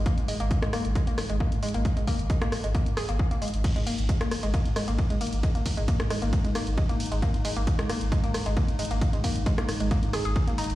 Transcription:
Already playing: synth drone G#2 D#3
0.06 synth arpeggio sound A#3, kick, closed hi-hat
0.18 sub bass G#1, closed hi-hat
0.28 synth arpeggio sound G#3, open hi-hat
0.40 sub bass G#1, synth arpeggio sound A#3, closed hi-hat
0.51 kick, closed hi-hat
0.62 sub bass G#1, synth arpeggio sound G#3, cross-stick, closed hi-hat
0.73 synth arpeggio sound A#3, cross-stick, open hi-hat
0.85 sub bass G#1, closed hi-hat
0.95 synth arpeggio sound G#3, kick, closed hi-hat
1.07 sub bass G#1, synth arpeggio sound A#3, closed hi-hat
1.18 cross-stick, open hi-hat
1.30 sub bass G#1, synth arpeggio sound G#3, closed hi-hat
1.40 synth arpeggio sound A#3, kick
1.52 sub bass G#1, closed hi-hat
1.63 synth arpeggio sound G#3, open hi-hat
1.69 closed hi-hat
1.74 sub bass G#1, synth arpeggio sound A#3, closed hi-hat
1.85 kick, closed hi-hat
1.97 sub bass G#1, synth arpeggio sound G#3, closed hi-hat
2.07 synth arpeggio sound A#3, kick, open hi-hat
2.19 sub bass G#1, closed hi-hat
2.30 synth arpeggio sound G#3, kick, closed hi-hat
2.42 sub bass G#1, synth arpeggio sound A#3, cross-stick, closed hi-hat
2.52 cross-stick, open hi-hat
2.64 sub bass G#1, synth arpeggio sound G#3, closed hi-hat
2.75 synth arpeggio sound A#3, kick, closed hi-hat
2.86 sub bass G#1, closed hi-hat
2.97 synth arpeggio sound G#4, cross-stick, open hi-hat
3.09 sub bass G#1, synth arpeggio sound A#3, closed hi-hat
3.19 kick
3.31 sub bass G#1, synth arpeggio sound A#3, closed hi-hat
3.42 synth arpeggio sound G#3, open hi-hat
3.48 closed hi-hat
3.54 sub bass G#1, closed hi-hat
3.64 synth drone G#2 D#3, kick, closed hi-hat, crash, ride
3.76 sub bass G#1, synth arpeggio sound G#3, closed hi-hat
3.87 synth arpeggio sound A#3, open hi-hat, ride
3.98 sub bass G#1, closed hi-hat
4.09 synth arpeggio sound G#3, kick, closed hi-hat, ride
4.21 sub bass G#1, synth arpeggio sound A#3, cross-stick, closed hi-hat
4.31 cross-stick, open hi-hat, ride
4.43 sub bass G#1, synth arpeggio sound G#3, closed hi-hat
4.54 synth arpeggio sound A#3, kick, closed hi-hat, ride
4.65 sub bass G#1, closed hi-hat
4.76 synth arpeggio sound G#3, cross-stick, open hi-hat, ride
4.88 sub bass G#1, synth arpeggio sound A#3, closed hi-hat
4.98 kick, ride
5.10 sub bass G#1, synth arpeggio sound G#3, closed hi-hat
5.21 synth arpeggio sound A#3, open hi-hat, ride
5.27 closed hi-hat
5.33 sub bass G#1, closed hi-hat
5.43 synth arpeggio sound G#3, kick, closed hi-hat, ride
5.55 sub bass G#1, synth arpeggio sound A#3, closed hi-hat
5.66 kick, open hi-hat, ride
5.77 sub bass G#1, synth arpeggio sound G#3, closed hi-hat
5.88 synth arpeggio sound A#3, kick, closed hi-hat, ride
6.00 sub bass G#1, cross-stick, closed hi-hat
6.10 synth arpeggio sound G#3, cross-stick, open hi-hat, ride
6.22 sub bass G#1, synth arpeggio sound A#3, closed hi-hat
6.33 kick, closed hi-hat, ride
6.45 sub bass G#1, synth arpeggio sound G#3, closed hi-hat
6.55 synth arpeggio sound A#3, cross-stick, open hi-hat, ride
6.67 sub bass G#1, closed hi-hat
6.78 synth arpeggio sound G#3, kick, ride
6.89 sub bass G#1, synth arpeggio sound A#3, closed hi-hat
7.00 open hi-hat, ride
7.06 closed hi-hat
7.12 sub bass G#1, synth arpeggio sound G#3, closed hi-hat
7.22 synth arpeggio sound A#3, kick, closed hi-hat, ride
7.34 sub bass G#1, closed hi-hat
7.45 synth arpeggio sound G#3, open hi-hat, ride
7.56 sub bass G#1, synth arpeggio sound A#3, closed hi-hat
7.67 kick, closed hi-hat, ride
7.79 sub bass G#1, synth arpeggio sound G#3, cross-stick, closed hi-hat
7.89 synth arpeggio sound A#3, cross-stick, open hi-hat, ride
8.01 sub bass G#1, closed hi-hat
8.12 synth arpeggio sound G#3, kick, closed hi-hat, ride
8.24 sub bass G#1, synth arpeggio sound A#3, closed hi-hat
8.34 cross-stick, open hi-hat, ride
8.46 sub bass G#1, synth arpeggio sound G#3, closed hi-hat
8.57 synth arpeggio sound A#3, kick, ride
8.68 sub bass G#1, closed hi-hat
8.79 synth arpeggio sound G#3, open hi-hat, ride
8.85 closed hi-hat
8.91 sub bass G#1, synth arpeggio sound A#3, closed hi-hat
9.01 kick, closed hi-hat, ride
9.13 sub bass G#1, synth arpeggio sound G#3, closed hi-hat
9.24 synth arpeggio sound A#3, kick, open hi-hat, ride
9.36 sub bass G#1, closed hi-hat
9.46 synth arpeggio sound G#3, kick, closed hi-hat, ride
9.58 sub bass G#1, synth arpeggio sound A#3, cross-stick, closed hi-hat
9.69 cross-stick, open hi-hat, ride
9.80 sub bass G#1, synth arpeggio sound G#3, closed hi-hat
9.91 synth arpeggio sound A#3, kick, closed hi-hat, ride
10.03 sub bass G#1, closed hi-hat
10.13 synth arpeggio sound G#4, cross-stick, open hi-hat, ride
10.25 sub bass G#1, synth arpeggio sound G#4, closed hi-hat
10.36 kick, ride
10.47 sub bass G#1, synth arpeggio sound A#3, closed hi-hat
10.58 synth arpeggio sound D#4, open hi-hat, ride
10.64 closed hi-hat
10.70 sub bass G#1, closed hi-hat

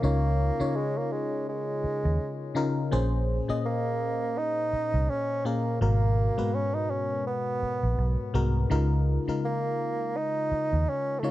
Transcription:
Already playing: fm electric piano C#3 C#4 D#4 F4 A#4
0.02 fingered electric bass C#2, fm electric piano C#3 C#4 D#4 F4 C#5, bassoon A#3
0.59 fm electric piano C#3 C#4 D#4 F4 C#5, muted fingered electric bass stroke
0.76 bassoon G#3
0.98 bassoon A#3
1.12 bassoon G#3
1.49 bassoon G#3
1.84 muted fingered electric bass stroke
2.05 fingered electric bass D#2
2.55 fm electric piano C#3 C#4 D#4 F4 A#4
2.91 fingered electric bass A#1, fm electric piano A#2 A#3 C#4 G#4 C5
3.48 fm electric piano A#2 A#3 C#4 G#4 D#5, muted fingered electric bass stroke
3.65 bassoon A#3
4.38 bassoon D#4
4.73 muted fingered electric bass stroke
4.94 fingered electric bass C2
5.10 bassoon C#4
5.45 fm electric piano A#2 A#3 C#4 G#4 A#4, bassoon A#3
5.81 fingered electric bass G#1, fm electric piano G#2 B2 G#3 F#4 A#4, bassoon A#3
6.37 fm electric piano G#2 G#3 B3 F#4 B4, muted fingered electric bass stroke
6.54 bassoon C#4
6.75 bassoon D#4
6.90 bassoon C#4
7.27 bassoon B3
7.63 muted fingered electric bass stroke
7.83 fingered electric bass A#1
7.98 fingered electric bass B1
8.34 fingered electric bass C2, fm electric piano G#2 G#3 B3 F#4 A#4
8.70 fingered electric bass C#2, fm electric piano C#3 G#3 D#4 F4 A#4
9.28 fm electric piano C#3 G#3 D#4 F4 A#4, muted fingered electric bass stroke
9.45 bassoon A#3
10.17 bassoon D#4
10.52 muted fingered electric bass stroke
10.73 fingered electric bass D#2
10.89 bassoon C#4
11.19 fm electric piano C#3, bassoon A3
11.23 fm electric piano G#3 D#4 F4 C#5, bassoon A#3

